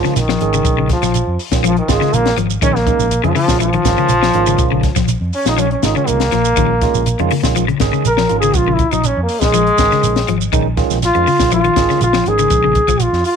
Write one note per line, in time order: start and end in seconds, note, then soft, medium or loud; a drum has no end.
0.00 0.18 D#3 medium
0.00 0.20 F3 medium
0.00 0.18 G#3 medium
0.00 0.18 C#4 medium
0.00 0.18 F4 loud
0.04 0.21 C#3 medium
0.04 muted fingered electric bass stroke soft
0.04 snare soft
0.04 shekere soft
0.16 0.35 A#1 loud
0.16 0.89 D#3 loud
0.16 snare soft
0.16 closed hi-hat medium
0.16 shekere loud
0.29 0.45 F3 medium
0.29 snare medium
0.41 0.60 G#1 medium
0.41 0.94 D#3 medium
0.41 0.94 G#3 medium
0.41 0.94 C#4 medium
0.41 0.94 G#4 medium
0.41 closed hi-hat medium
0.41 shekere soft
0.53 0.70 C#3 medium
0.53 closed hi-hat soft
0.53 shekere medium
0.64 0.93 A#1 loud
0.64 kick medium
0.64 closed hi-hat medium
0.64 shekere medium
0.78 0.95 C#3 medium
0.89 1.39 F3 medium
0.89 kick medium
0.89 snare soft
0.89 closed hi-hat medium
0.89 shekere soft
1.02 1.21 A#1 medium
1.02 1.19 F3 medium
1.02 snare soft
1.02 closed hi-hat soft
1.02 shekere loud
1.14 closed hi-hat medium
1.14 shekere medium
1.27 1.36 F2 medium
1.39 open hi-hat medium
1.39 shekere soft
1.51 1.79 A#1 medium
1.51 1.72 D#3 medium
1.51 1.72 G#3 medium
1.51 1.72 C#4 medium
1.51 1.72 F4 medium
1.51 kick medium
1.51 snare medium
1.51 closed hi-hat soft
1.51 shekere medium
1.64 1.80 F3 medium
1.64 1.77 F3 loud
1.64 closed hi-hat medium
1.64 shekere medium
1.77 1.92 D#3 medium
1.77 closed hi-hat soft
1.88 1.98 G#1 medium
1.88 2.29 D#3 medium
1.88 2.29 G#3 medium
1.88 2.16 G#3 loud
1.88 2.29 C#4 medium
1.88 2.29 F4 loud
1.88 kick medium
1.88 snare medium
1.88 closed hi-hat medium
1.88 shekere medium
2.01 2.17 C#3 medium
2.01 muted fingered electric bass stroke soft
2.01 snare soft
2.01 shekere soft
2.13 2.32 A#1 medium
2.13 2.38 A#3 loud
2.13 closed hi-hat medium
2.13 shekere loud
2.26 snare medium
2.26 closed hi-hat soft
2.37 2.56 G#1 medium
2.37 2.54 F3 medium
2.37 closed hi-hat medium
2.37 shekere soft
2.50 shekere medium
2.62 2.90 A#1 loud
2.62 2.76 D#3 medium
2.62 2.79 D#3 medium
2.62 2.76 G#3 medium
2.62 2.76 C#4 medium
2.62 2.77 C#4 loud
2.62 2.76 D#4 medium
2.62 kick loud
2.62 closed hi-hat medium
2.62 shekere medium
2.75 3.23 A#3 medium
2.75 snare soft
2.86 3.07 D#3 medium
2.86 3.07 G#3 medium
2.86 3.07 C#4 medium
2.86 3.07 D#4 medium
2.86 kick medium
2.86 closed hi-hat medium
2.86 shekere soft
2.99 3.18 A#1 medium
2.99 shekere medium
3.11 closed hi-hat medium
3.11 shekere medium
3.23 3.33 F2 medium
3.23 3.32 C#3 medium
3.23 3.37 D#3 medium
3.23 3.35 F3 medium
3.23 3.37 G#3 medium
3.23 3.37 C#4 medium
3.23 3.37 G#4 medium
3.23 closed hi-hat soft
3.35 3.52 C#3 medium
3.35 3.60 F3 loud
3.35 open hi-hat medium
3.35 shekere soft
3.48 3.76 A#1 medium
3.48 3.69 D#3 medium
3.48 3.69 G#3 medium
3.48 3.69 C#4 medium
3.48 3.69 F4 medium
3.48 kick medium
3.48 snare medium
3.48 shekere medium
3.60 3.69 F3 medium
3.60 5.05 F3 loud
3.60 closed hi-hat medium
3.60 shekere medium
3.73 3.90 D#3 medium
3.73 closed hi-hat soft
3.85 3.95 G#1 medium
3.85 4.12 D#3 medium
3.85 4.12 G#3 medium
3.85 4.12 C#4 medium
3.85 4.12 F4 medium
3.85 kick medium
3.85 snare medium
3.85 closed hi-hat medium
3.85 shekere loud
3.98 4.14 C#3 medium
3.98 muted fingered electric bass stroke soft
3.98 shekere soft
4.09 4.29 A#1 medium
4.09 closed hi-hat medium
4.09 shekere medium
4.23 4.39 F3 medium
4.23 snare medium
4.33 4.53 G#1 medium
4.33 4.88 D#3 medium
4.33 4.88 G#3 medium
4.33 4.88 C#4 medium
4.33 4.88 F4 loud
4.33 closed hi-hat medium
4.33 shekere soft
4.46 4.64 C#3 medium
4.46 closed hi-hat soft
4.46 shekere medium
4.58 4.87 A#1 loud
4.58 kick loud
4.58 closed hi-hat medium
4.58 shekere medium
4.72 4.88 C#3 medium
4.83 kick medium
4.83 snare soft
4.83 closed hi-hat medium
4.83 shekere soft
4.96 5.15 A#1 loud
4.96 5.13 F3 medium
4.96 kick medium
4.96 snare soft
4.96 closed hi-hat soft
4.96 shekere loud
5.08 closed hi-hat medium
5.08 shekere loud
5.21 5.30 F2 medium
5.33 5.46 C#4 medium
5.33 open hi-hat medium
5.33 shekere soft
5.45 5.74 A#1 medium
5.45 5.66 D#3 medium
5.45 5.66 G#3 medium
5.45 5.66 C#4 medium
5.45 5.61 D#4 medium
5.45 5.66 F4 medium
5.45 snare medium
5.45 closed hi-hat soft
5.45 shekere medium
5.58 5.74 F3 medium
5.58 5.70 C#4 loud
5.58 closed hi-hat medium
5.58 shekere medium
5.71 5.83 C#4 medium
5.71 closed hi-hat soft
5.83 5.93 G#1 medium
5.83 6.23 D#3 medium
5.83 6.23 G#3 medium
5.83 6.23 C#4 medium
5.83 5.95 D#4 medium
5.83 6.23 F4 medium
5.83 snare medium
5.83 closed hi-hat medium
5.83 shekere loud
5.96 6.12 C#3 medium
5.96 6.09 C#4 medium
5.96 muted fingered electric bass stroke soft
5.96 shekere soft
6.07 6.30 C2 medium
6.07 7.52 A#3 loud
6.07 closed hi-hat medium
6.07 shekere loud
6.20 snare medium
6.20 closed hi-hat soft
6.32 6.55 A#1 medium
6.32 6.49 F3 medium
6.32 snare soft
6.32 closed hi-hat medium
6.32 shekere soft
6.45 shekere medium
6.56 6.85 A#1 loud
6.56 6.73 D#3 medium
6.56 6.71 D#3 medium
6.56 6.71 G#3 medium
6.56 6.71 C#4 medium
6.56 6.71 F4 medium
6.56 kick medium
6.56 closed hi-hat medium
6.56 shekere medium
6.81 7.02 D#3 medium
6.81 7.02 G#3 medium
6.81 7.02 C#4 medium
6.81 7.02 F4 loud
6.81 kick medium
6.81 snare soft
6.81 closed hi-hat medium
6.81 shekere soft
6.95 7.13 A#1 medium
6.95 shekere medium
7.06 closed hi-hat medium
7.06 shekere medium
7.19 7.29 F2 medium
7.19 7.27 C#3 medium
7.19 7.32 D#3 medium
7.19 7.32 G#3 medium
7.19 7.32 C#4 medium
7.19 7.32 F4 loud
7.19 closed hi-hat soft
7.31 7.48 C#3 medium
7.31 open hi-hat medium
7.31 shekere soft
7.43 7.71 A#1 medium
7.43 7.63 D#3 medium
7.43 7.63 G#3 medium
7.43 7.63 C#4 medium
7.43 7.63 F4 loud
7.43 kick medium
7.43 snare medium
7.43 shekere medium
7.56 7.64 F3 medium
7.56 closed hi-hat medium
7.56 shekere medium
7.68 7.85 C#3 medium
7.68 closed hi-hat soft
7.80 7.90 G#1 medium
7.80 8.07 D#3 medium
7.80 8.07 G#3 medium
7.80 8.07 C#4 medium
7.80 8.07 G#4 loud
7.80 kick medium
7.80 snare medium
7.80 closed hi-hat medium
7.80 shekere medium
7.93 8.09 C#3 medium
7.93 muted fingered electric bass stroke soft
7.93 shekere soft
8.05 8.24 A#1 medium
8.05 8.38 A#4 loud
8.05 closed hi-hat medium
8.05 shekere loud
8.17 8.34 F3 medium
8.17 snare medium
8.29 8.49 G#1 medium
8.29 8.83 D#3 medium
8.29 8.83 G#3 medium
8.29 8.83 C#4 medium
8.29 8.83 F4 medium
8.29 closed hi-hat medium
8.29 shekere soft
8.40 8.59 C#3 medium
8.40 8.58 G#4 loud
8.40 closed hi-hat soft
8.40 shekere medium
8.54 8.83 A#1 loud
8.54 8.75 F4 medium
8.54 kick medium
8.54 closed hi-hat medium
8.54 shekere medium
8.68 8.84 C#3 medium
8.74 8.92 E4 medium
8.79 kick medium
8.79 closed hi-hat medium
8.79 shekere soft
8.91 9.11 A#1 medium
8.91 9.09 F3 medium
8.91 9.08 D#4 medium
8.91 closed hi-hat soft
8.91 shekere medium
9.04 9.21 C#4 loud
9.04 closed hi-hat medium
9.04 shekere medium
9.17 9.26 F2 loud
9.23 9.41 A#3 medium
9.29 open hi-hat medium
9.29 shekere soft
9.40 9.69 A#1 medium
9.40 9.62 D#3 medium
9.40 10.34 G#3 loud
9.40 9.62 G#3 medium
9.40 9.62 C#4 medium
9.40 9.62 G#4 medium
9.40 kick medium
9.40 snare medium
9.40 closed hi-hat soft
9.40 shekere medium
9.54 9.70 F3 medium
9.54 closed hi-hat medium
9.54 shekere medium
9.67 closed hi-hat soft
9.78 9.88 G#1 medium
9.78 10.19 D#3 medium
9.78 10.19 G#3 medium
9.78 10.19 C#4 medium
9.78 10.19 G#4 medium
9.78 kick medium
9.78 snare medium
9.78 closed hi-hat medium
9.78 shekere loud
9.92 10.08 C#3 medium
9.92 muted fingered electric bass stroke soft
9.92 snare soft
9.92 shekere soft
10.03 10.22 A#1 loud
10.03 closed hi-hat medium
10.03 shekere loud
10.16 snare medium
10.16 closed hi-hat soft
10.28 10.47 G#1 medium
10.28 10.45 F3 medium
10.28 closed hi-hat medium
10.28 shekere soft
10.41 shekere medium
10.52 10.81 A#1 loud
10.52 10.66 D#3 loud
10.52 10.69 D#3 medium
10.52 10.66 G#3 medium
10.52 10.66 C#4 medium
10.52 10.66 D#4 loud
10.52 kick loud
10.52 closed hi-hat medium
10.52 shekere medium
10.77 10.97 D#3 loud
10.77 10.97 G#3 medium
10.77 10.98 C#4 medium
10.77 10.98 F4 loud
10.77 kick medium
10.77 snare soft
10.77 closed hi-hat medium
10.77 shekere soft
10.90 11.09 A#1 loud
10.90 snare soft
10.90 shekere loud
11.02 11.52 F4 loud
11.02 snare soft
11.02 closed hi-hat medium
11.02 shekere loud
11.15 11.25 F2 medium
11.15 11.28 D#3 medium
11.15 11.28 G#3 medium
11.15 11.28 C#4 medium
11.15 11.28 F4 medium
11.15 muted clean electric guitar stroke medium
11.15 closed hi-hat soft
11.27 11.44 C#3 medium
11.27 open hi-hat medium
11.27 shekere soft
11.39 11.68 A#1 medium
11.39 11.59 D#3 medium
11.39 11.60 G#3 medium
11.39 11.60 C#4 medium
11.39 11.60 F4 medium
11.39 kick medium
11.39 snare medium
11.39 shekere medium
11.51 11.60 F3 medium
11.51 12.01 F4 loud
11.51 closed hi-hat medium
11.51 shekere medium
11.64 11.81 D#3 medium
11.64 closed hi-hat soft
11.76 11.86 G#1 medium
11.76 12.04 D#3 medium
11.76 12.04 G#3 medium
11.76 12.04 C#4 medium
11.76 12.04 G#4 loud
11.76 kick medium
11.76 snare medium
11.76 closed hi-hat medium
11.76 shekere medium
11.90 12.06 C#3 medium
11.90 muted fingered electric bass stroke soft
11.90 snare soft
11.90 shekere soft
12.01 12.20 A#1 medium
12.01 12.29 F4 loud
12.01 closed hi-hat medium
12.01 shekere medium
12.13 12.31 F3 medium
12.13 snare medium
12.26 12.45 G#1 medium
12.26 12.81 D#3 medium
12.26 12.81 G#3 medium
12.26 12.81 C#4 medium
12.26 12.81 D#4 medium
12.26 13.03 G#4 loud
12.26 closed hi-hat medium
12.26 shekere soft
12.38 12.55 C#3 medium
12.38 closed hi-hat soft
12.38 shekere medium
12.50 12.79 A#1 loud
12.50 kick medium
12.50 closed hi-hat medium
12.50 shekere medium
12.64 12.80 C#3 medium
12.75 kick medium
12.75 closed hi-hat medium
12.75 shekere soft
12.88 13.07 A#1 medium
12.88 13.05 F3 medium
12.88 kick medium
12.88 closed hi-hat soft
12.88 shekere medium
13.00 13.25 F4 medium
13.00 closed hi-hat medium
13.00 shekere medium
13.13 13.22 F2 medium
13.13 snare soft
13.24 13.36 F4 loud
13.24 open hi-hat medium
13.24 shekere soft